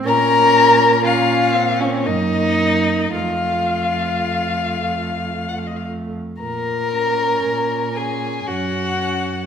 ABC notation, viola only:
X:1
M:3/4
L:1/8
Q:1/4=57
K:Bbm
V:1 name="Viola"
D2 D C B,2 | =A,6 | z D2 D D D |]